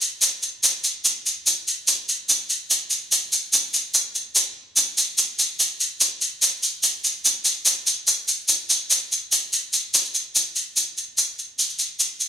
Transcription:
0.01 shaker medium
0.22 shaker medium
0.42 shaker medium
0.64 shaker medium
0.84 shaker medium
1.05 shaker loud
1.26 shaker medium
1.47 shaker medium
1.67 shaker medium
1.88 shaker medium
2.09 shaker medium
2.29 shaker medium
2.50 shaker medium
2.71 shaker medium
2.90 shaker medium
3.12 shaker medium
3.32 shaker medium
3.53 shaker medium
3.74 shaker medium
3.94 shaker loud
4.15 shaker medium
4.35 shaker loud
4.76 shaker medium
4.98 shaker medium
5.18 shaker medium
5.39 shaker medium
5.60 shaker medium
5.80 shaker medium
6.01 shaker loud
6.21 shaker medium
6.42 shaker medium
6.63 shaker medium
6.83 shaker medium
7.04 shaker medium
7.25 shaker medium
7.45 shaker medium
7.66 shaker loud
7.87 shaker medium
8.07 shaker medium
8.28 shaker medium
8.48 shaker medium
8.70 shaker medium
8.90 shaker medium
9.12 shaker medium
9.32 shaker medium
9.53 shaker medium
9.73 shaker medium
9.94 shaker loud
10.05 shaker soft
10.14 shaker medium
10.35 shaker medium
10.56 shaker medium
10.77 shaker medium
10.97 shaker medium
11.18 shaker medium
11.39 shaker soft
11.59 shaker medium
11.69 shaker soft
11.79 shaker medium
12.00 shaker medium
12.20 shaker medium

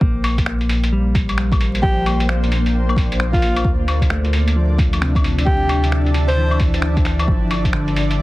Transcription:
0.01 3.63 A#1 medium
0.01 3.65 A#3 medium
0.01 1.72 A#3 medium
0.01 kick loud
0.10 8.22 D5 medium
0.24 open hi-hat medium
0.24 claves medium
0.38 kick medium
0.38 closed hi-hat medium
0.44 4.57 C5 medium
0.44 finger snap loud
0.61 closed hi-hat soft
0.69 open hi-hat medium
0.84 closed hi-hat medium
0.92 2.63 G3 medium
1.15 kick loud
1.15 open hi-hat medium
1.29 closed hi-hat medium
1.29 claves soft
1.38 finger snap loud
1.38 open hi-hat soft
1.52 kick loud
1.52 closed hi-hat soft
1.52 claves soft
1.61 open hi-hat medium
1.75 closed hi-hat medium
1.83 3.54 F3 medium
1.83 2.28 G4 medium
1.83 kick loud
2.06 open hi-hat medium
2.06 claves medium
2.20 closed hi-hat medium
2.29 3.84 A#3 medium
2.29 finger snap loud
2.44 4.00 D4 medium
2.44 closed hi-hat soft
2.52 open hi-hat medium
2.66 open hi-hat soft
2.89 claves medium
2.96 kick loud
2.96 open hi-hat medium
3.12 closed hi-hat medium
3.20 finger snap loud
3.33 3.70 F4 medium
3.33 kick loud
3.33 closed hi-hat soft
3.42 open hi-hat medium
3.56 closed hi-hat medium
3.56 claves medium
3.64 7.27 D2 medium
3.64 8.22 D4 medium
3.64 kick loud
3.88 open hi-hat medium
3.88 claves medium
4.02 8.22 E5 medium
4.02 kick medium
4.02 closed hi-hat medium
4.10 5.81 A3 medium
4.10 finger snap loud
4.25 8.22 A5 medium
4.25 closed hi-hat soft
4.33 open hi-hat medium
4.48 closed hi-hat medium
4.56 6.27 F3 medium
4.78 kick loud
4.78 open hi-hat medium
4.93 closed hi-hat medium
4.93 claves soft
5.01 6.72 C3 medium
5.01 finger snap loud
5.01 open hi-hat soft
5.15 kick loud
5.15 closed hi-hat soft
5.15 claves soft
5.24 open hi-hat medium
5.38 closed hi-hat medium
5.46 5.92 G4 medium
5.46 kick loud
5.69 open hi-hat medium
5.69 claves soft
5.84 closed hi-hat medium
5.92 finger snap loud
6.06 closed hi-hat soft
6.14 open hi-hat medium
6.28 6.60 C5 medium
6.28 open hi-hat soft
6.37 7.47 E3 medium
6.51 claves medium
6.60 kick loud
6.60 open hi-hat medium
6.74 closed hi-hat medium
6.82 finger snap loud
6.97 kick loud
6.97 closed hi-hat soft
7.05 finger snap medium
7.05 open hi-hat medium
7.19 closed hi-hat medium
7.19 claves medium
7.27 8.22 G1 medium
7.27 8.18 F3 medium
7.27 8.22 G4 medium
7.27 kick loud
7.40 8.22 G5 medium
7.51 open hi-hat medium
7.51 claves soft
7.65 kick medium
7.65 closed hi-hat medium
7.73 8.22 D3 medium
7.73 finger snap loud
7.88 closed hi-hat soft
7.96 open hi-hat medium
8.11 closed hi-hat soft
8.19 8.22 F3 medium

